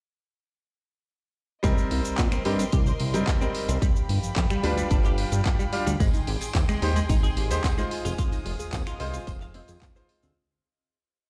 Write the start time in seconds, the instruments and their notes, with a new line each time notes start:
1.63 analog synth bass C2, grand piano G3 C4 D#4 A#4, clean electric guitar C4, violin section A#4 D#5 C6, kick, closed hi-hat, cabasa
1.78 cabasa
1.91 analog synth bass C2, open hi-hat
2.05 cabasa
2.18 analog synth bass A#2, kick, clap, closed hi-hat, cabasa
2.32 clean electric guitar C4, finger snap, cabasa
2.45 analog synth bass G2, grand piano G3 C4 D#4 A#4, clean electric guitar G4, open hi-hat
2.59 clean electric guitar C4, closed hi-hat, cabasa
2.72 analog synth bass C2, clean electric guitar G4, kick, closed hi-hat, cabasa
2.87 clean electric guitar C5, cabasa
3.00 analog synth bass C2, open hi-hat
3.14 analog synth bass G2, grand piano G3 C4 D#4 A#4, closed hi-hat, cabasa
3.27 kick, clap, closed hi-hat, cabasa
3.41 grand piano G3 C4 D#4 A#4, clean electric guitar C4, cabasa
3.55 open hi-hat
3.69 analog synth bass C2, clean electric guitar C4, closed hi-hat, cabasa
3.82 clean electric guitar G3, violin section G4 F5 B5, kick, closed hi-hat, cabasa
3.96 cabasa
4.09 analog synth bass G1, open hi-hat
4.23 analog synth bass F2, cabasa
4.36 analog synth bass F2, kick, clap, closed hi-hat, cabasa
4.50 clean electric guitar G3, finger snap, cabasa
4.63 analog synth bass D2, grand piano G3 D4 F4 B4, clean electric guitar D4, open hi-hat
4.78 clean electric guitar G3, closed hi-hat, cabasa
4.91 analog synth bass G1, clean electric guitar D4, kick, closed hi-hat, cabasa
5.05 clean electric guitar G4, clap, cabasa
5.18 open hi-hat
5.32 analog synth bass G2, closed hi-hat, cabasa
5.45 kick, clap, closed hi-hat, cabasa
5.59 clean electric guitar G3, cabasa
5.72 grand piano G3 D4 F4 F5, open hi-hat
5.86 analog synth bass D2, clean electric guitar G3, closed hi-hat, cabasa
6.00 analog synth bass G#1, clean electric guitar G#3, synth arpeggio sound C4, violin section G#4 G5 C6, kick, closed hi-hat, tambourine, cabasa
6.13 synth arpeggio sound D#4, tambourine, cabasa
6.27 analog synth bass G#1, synth arpeggio sound G4, open hi-hat
6.41 synth arpeggio sound G#4, tambourine, cabasa
6.55 analog synth bass D#2, synth arpeggio sound C4, kick, clap, closed hi-hat, tambourine, cabasa
6.69 clean electric guitar G#3, synth arpeggio sound D#4, finger snap, tambourine, cabasa
6.82 analog synth bass D#2, grand piano G#3 D#4 G4 C5, clean electric guitar D#4, synth arpeggio sound G4, open hi-hat
6.96 clean electric guitar G#3, synth arpeggio sound G#4, closed hi-hat, tambourine, cabasa
7.09 analog synth bass G#1, synth arpeggio sound C4, clean electric guitar D#4, kick, closed hi-hat, tambourine, cabasa
7.23 synth arpeggio sound D#4, clean electric guitar G#4, tambourine, cabasa
7.37 analog synth bass G#1, synth arpeggio sound G4, open hi-hat
7.50 analog synth bass D#2, grand piano G#3 D#4 G4 C5, synth arpeggio sound G#4, closed hi-hat, tambourine, cabasa
7.64 synth arpeggio sound C4, kick, clap, closed hi-hat, tambourine, cabasa
7.77 grand piano G#3 D#4 F4 C5, clean electric guitar G#3, synth arpeggio sound D#4, tambourine, cabasa
7.91 synth arpeggio sound F4, violin section F5 D#6, open hi-hat
8.05 analog synth bass F1, clean electric guitar F4, synth arpeggio sound G#4, closed hi-hat, tambourine, cabasa
8.18 synth arpeggio sound C4, clean electric guitar F4, kick, closed hi-hat, tambourine, cabasa
8.32 synth arpeggio sound D#4, closed hi-hat, tambourine, cabasa
8.45 analog synth bass F1, synth arpeggio sound F4, open hi-hat
8.59 analog synth bass D#2, synth arpeggio sound G#4, tambourine, cabasa
8.73 analog synth bass D#2, synth arpeggio sound C4, kick, clap, closed hi-hat, tambourine, cabasa
8.87 synth arpeggio sound D#4, clean electric guitar F4, finger snap, tambourine, cabasa
9.00 analog synth bass C2, grand piano G#3 D#4 F4 C5, synth arpeggio sound F4, clean electric guitar C5, open hi-hat
9.14 clean electric guitar F4, synth arpeggio sound G#4, closed hi-hat, tambourine, cabasa
9.27 analog synth bass F1, synth arpeggio sound C4, clean electric guitar C5, kick, closed hi-hat, tambourine, cabasa
9.41 synth arpeggio sound D#4, clean electric guitar F5, clap, tambourine, cabasa
9.54 grand piano G#3 D#4 F4 C5, clean electric guitar C4, synth arpeggio sound F4, open hi-hat
9.68 analog synth bass F2, synth arpeggio sound G#4, closed hi-hat, tambourine, cabasa
9.82 synth arpeggio sound C4, kick, clap, closed hi-hat, tambourine, cabasa
9.95 grand piano G#3 D#4 F4 C5, synth arpeggio sound D#4, clean electric guitar C5, tambourine, cabasa
10.09 synth arpeggio sound F4, open hi-hat
10.23 analog synth bass D2, clean electric guitar C4, synth arpeggio sound G#4, tambourine, cabasa